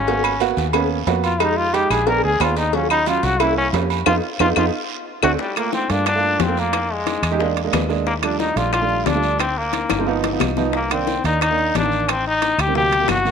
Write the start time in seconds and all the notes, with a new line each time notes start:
Already playing: G#1 C#4
0.07 A#3 B3 F#4, cowbell, long guiro
0.24 low agogo, claves
0.40 A#3 B3 F#4, cowbell, low timbale, low agogo, short guiro
0.57 D#2, cowbell, short guiro
0.73 A#3 B3 C#4, cowbell, low agogo, long guiro, claves
1.07 F2 A#3 B3 F#4, cowbell, low timbale, low agogo, short guiro
1.24 F4, low agogo, short guiro
1.40 G#3 D#4 G4, cowbell, low agogo, long guiro, claves
1.57 F4
1.73 G#3 D#4 G4, cowbell, low timbale, low agogo, short guiro
1.90 A#1 G#4, cowbell, low agogo, short guiro, claves
2.07 B3 D4 G#4 A#4, cowbell, long guiro
2.24 D2 G#4
2.40 D#2 B3 D4 F4 G#4, cowbell, low timbale, low agogo, short guiro, claves
2.57 D#4, cowbell, short guiro
2.73 F#3 C#4 F4, cowbell, long guiro
2.90 D#4, low agogo, claves
3.06 F#3 C#4 F4, cowbell, low timbale, low agogo, short guiro
3.23 C2 F#4, cowbell, short guiro
3.40 A#3 C#4 E4, cowbell, low agogo, long guiro, claves
3.58 C#4
3.73 F2 A#3 C#4 G4, cowbell, low timbale, low agogo, short guiro
3.90 low agogo, short guiro
4.06 F2 B3 D#4 F4, cowbell, high timbale, long guiro, claves
4.39 F2 B3 D#4 F4, cowbell, high timbale, long guiro, claves
4.56 F2 B3 D#4 F4, cowbell, high timbale, long guiro, claves
5.23 D2 A3 C4 D4 F#4, cowbell, high timbale, long guiro, claves
5.39 G3, high bongo, long guiro
5.56 A3 A#3 F4, high bongo, high timbale, claves
5.73 C4, high bongo, short guiro
5.89 G2 A3 A#3 D4 F4, high bongo, high timbale, short guiro
6.06 D4, high bongo, high timbale, long guiro, claves
6.15 A3 A#3 F4
6.23 high bongo
6.39 F2 C4, high bongo, low bongo, high timbale, short guiro
6.48 A3 A#3 F4
6.57 A#3, short guiro
6.73 high bongo, high timbale, long guiro, claves
6.93 G#3
7.07 high bongo, high timbale, short guiro
7.22 E2, high timbale, short guiro, claves
7.31 G#3 D#4 G4
7.39 G#3 A#3 D4, high bongo, long guiro
7.57 high bongo, high timbale
7.64 G#3 A#3 D4
7.73 D#2 B4, high bongo, low bongo, high timbale, low timbale, short guiro, claves
7.89 G#3 A#3 D4, high bongo, short guiro
8.07 A#3, high bongo, long guiro
8.22 F3 G3 A3 D4, high bongo, high timbale, claves
8.40 D#4, high bongo, short guiro
8.55 A#1 F3 G3 A3 D4 F4, high bongo, high timbale, short guiro
8.73 F4, high bongo, high timbale, long guiro, claves
8.81 F3 G3 A3 D4
8.89 high bongo
9.06 D2 D4, high bongo, low bongo, high timbale, low timbale, short guiro
9.14 F3 G3 A3 D4
9.23 short guiro
9.39 C4, high bongo, high timbale, long guiro, claves
9.58 A#3
9.73 high bongo, high timbale, short guiro
9.89 G1, high bongo, high timbale, short guiro, claves
9.98 F3 G#3 C4
10.07 F3 B3 D#4, long guiro
10.24 high bongo, high timbale
10.32 F3 B3 D#4
10.40 C2, low bongo, high timbale, short guiro, claves
10.57 F3 B3 D#4, low bongo, short guiro
10.73 A#3, high bongo, long guiro
10.90 D#3 A#3 C4 D4, high bongo, high timbale, claves
11.07 high bongo, short guiro
11.24 D#2 D#3 A#3 D4 D#4, high bongo, high timbale, short guiro
11.41 D#4, high bongo, high timbale, long guiro, claves
11.50 D#3 A#3 D4
11.59 high bongo
11.75 A1 D4, high bongo, low bongo, high timbale, short guiro
11.83 D#3 A#3 D4
11.92 short guiro
12.09 C4, high bongo, high timbale, long guiro, claves
12.27 D#4
12.42 high bongo, high timbale, short guiro
12.58 D2 G4, high bongo, high timbale, short guiro, claves
12.67 D#3 G3 C4
12.74 C3 F#3 A#3 G4, high bongo, long guiro
12.91 high bongo, high timbale
12.99 C3 F#3 A#3
13.08 G1 F#4, high bongo, low bongo, high timbale, short guiro, claves
13.25 C3 F#3 A#3, high bongo, short guiro